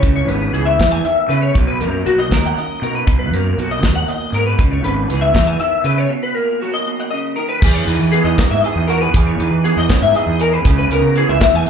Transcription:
Already playing: clean electric guitar E3
0.02 fingered electric bass C#2, clean electric guitar C#3, kick, closed hi-hat
0.16 clean electric guitar C#5
0.27 fingered electric bass G#1, clean electric guitar B3 B4, closed hi-hat
0.53 fingered electric bass C#2, clean electric guitar E3 G#4, closed hi-hat
0.65 clean electric guitar E5
0.79 fingered electric bass E2, clean electric guitar E3, kick, snare, closed hi-hat
0.91 clean electric guitar G#5
1.05 clean electric guitar D#3 E5, closed hi-hat
1.29 fingered electric bass C#3, clean electric guitar C#3 B4, closed hi-hat
1.42 clean electric guitar C#5
1.55 fingered electric bass B1, clean electric guitar B2, kick, closed hi-hat
1.67 clean electric guitar B4
1.80 fingered electric bass F#2, clean electric guitar A#3 A#4, closed hi-hat
2.06 fingered electric bass B1, clean electric guitar F#3 F#4, closed hi-hat
2.18 clean electric guitar D#5
2.31 fingered electric bass D#2, clean electric guitar A#4, kick, snare, closed hi-hat
2.46 clean electric guitar F#5
2.56 clean electric guitar F#2 D#5, closed hi-hat
2.82 fingered electric bass B2, clean electric guitar D#4 A#4, closed hi-hat
2.95 clean electric guitar B4
3.07 fingered electric bass B1, clean electric guitar B2, kick, closed hi-hat
3.19 clean electric guitar B4
3.32 fingered electric bass F#2, clean electric guitar A#3 A#4, closed hi-hat
3.57 fingered electric bass B1, clean electric guitar F#3 F#4, closed hi-hat
3.71 clean electric guitar D#5
3.83 fingered electric bass D#2, clean electric guitar G#2, kick, snare, closed hi-hat
3.95 clean electric guitar F#5
4.08 clean electric guitar A#2 D#5, closed hi-hat
4.32 fingered electric bass G#2, clean electric guitar B2 A#4, closed hi-hat
4.46 clean electric guitar B4
4.58 fingered electric bass C#2, clean electric guitar C#3, kick, closed hi-hat
4.71 clean electric guitar C#5
4.84 fingered electric bass G#1, clean electric guitar B3 B4, closed hi-hat
5.08 fingered electric bass C#2, clean electric guitar E3 G#4, closed hi-hat
5.21 clean electric guitar E5
5.35 fingered electric bass E2, kick, snare, closed hi-hat
5.47 clean electric guitar G#5
5.59 clean electric guitar D#3 E5, closed hi-hat
5.84 fingered electric bass C#3, clean electric guitar C#3 B4, closed hi-hat
5.98 clean electric guitar C#5
6.10 clean electric guitar B2
6.23 clean electric guitar B4
6.34 clean electric guitar A#3 A#4
6.60 clean electric guitar F#3 F#4
6.74 clean electric guitar D#5
6.87 clean electric guitar B2
7.00 clean electric guitar F#5
7.11 clean electric guitar C#3 D#5
7.36 clean electric guitar D#3 A#4
7.49 clean electric guitar B4
7.62 fingered electric bass E2, clean electric guitar E3 G#4, kick, crash
7.73 clean electric guitar C#5
7.86 fingered electric bass E2, clean electric guitar B4, closed hi-hat
7.90 clean electric guitar D#4
7.99 fingered electric bass E3
8.12 clean electric guitar B3 G#4, closed hi-hat
8.24 fingered electric bass E2, clean electric guitar D#5
8.38 clean electric guitar D#4, kick, snare, closed hi-hat
8.50 fingered electric bass G#2, clean electric guitar E5
8.61 clean electric guitar D#5, closed hi-hat
8.66 clean electric guitar G#4
8.76 fingered electric bass E2
8.88 clean electric guitar F#4 A#4, closed hi-hat
9.01 clean electric guitar G#4 B4
9.14 fingered electric bass E2, clean electric guitar E3 G#4, kick, closed hi-hat
9.26 clean electric guitar C#5
9.39 fingered electric bass E2, clean electric guitar D#4 B4, closed hi-hat
9.51 fingered electric bass E3
9.64 clean electric guitar B3 G#4, closed hi-hat
9.76 fingered electric bass E2, clean electric guitar D#5
9.89 clean electric guitar C#4, kick, snare, closed hi-hat
10.02 fingered electric bass G#2, clean electric guitar D#4 E5
10.15 clean electric guitar G#4 D#5, closed hi-hat
10.26 fingered electric bass E2
10.40 clean electric guitar G#4 A#4, closed hi-hat
10.53 clean electric guitar B4
10.65 fingered electric bass C#2, clean electric guitar C#3 G#4, kick, closed hi-hat
10.78 clean electric guitar B4
10.89 fingered electric bass C#2, clean electric guitar B3 A#4, closed hi-hat
11.02 fingered electric bass C#3
11.16 clean electric guitar E3 G#4, closed hi-hat
11.29 fingered electric bass C#2, clean electric guitar E5
11.41 clean electric guitar B3, kick, snare, closed hi-hat
11.53 fingered electric bass E2, clean electric guitar G#5
11.66 closed hi-hat

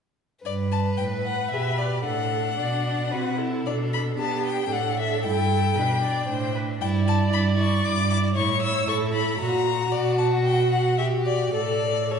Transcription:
0.45 cello G2, violin B4 D5
0.72 violin A5
0.97 cello A2, viola B4, violin G5
1.25 violin F#5
1.50 cello B2, violin G4 E5
1.78 violin D5
2.05 cello A2, violin D4 F#5, viola A4
2.58 cello B2, viola D5
3.11 cello C3, violin F#4, viola B4
3.38 violin E4, viola A4
3.66 cello B2, violin D4 D5
3.93 violin B5
4.18 cello B3, violin D4 A5, viola G4
4.45 violin G5
4.70 cello A2, viola A4, violin F#5
4.99 violin E5
5.24 cello G2, violin E4 G5
5.76 cello B2, violin D4, viola B4
6.02 viola D5
6.28 cello A2, violin D4, viola C5
6.55 viola B4
6.80 cello G2, violin E4 G5, viola D5
7.08 violin E4 A5
7.32 cello G2, violin E4 B5
7.58 violin E4 C#6
7.83 cello G2, violin E4 D6
8.10 violin E4 D6
8.35 cello A2, violin E4 C#6, viola C#5
8.61 violin E4 E6
8.88 cello A2, violin E4 C#6, viola A4
9.13 violin E4 B5
9.39 cello A#2, violin F#4 A#5, viola F#4
9.66 violin F#4
9.92 cello B2, violin F#4 D5
10.18 violin A5
10.45 violin G5
10.72 violin F#5
10.98 viola F#4, violin G4 E5
11.26 violin D5
11.53 cello A2, viola A4, violin A4 D5
12.11 viola A4, violin A4 C#5

